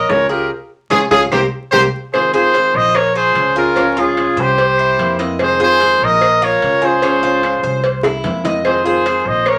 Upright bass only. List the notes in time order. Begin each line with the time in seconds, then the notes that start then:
0.09 C#2
0.90 C#2
1.11 C#2
1.31 C2
1.72 C2
2.74 A#1
3.34 C#2
4.36 C2
4.98 F2
6.00 A#1
6.61 C#2
7.63 C2
8.24 F2
9.26 A#1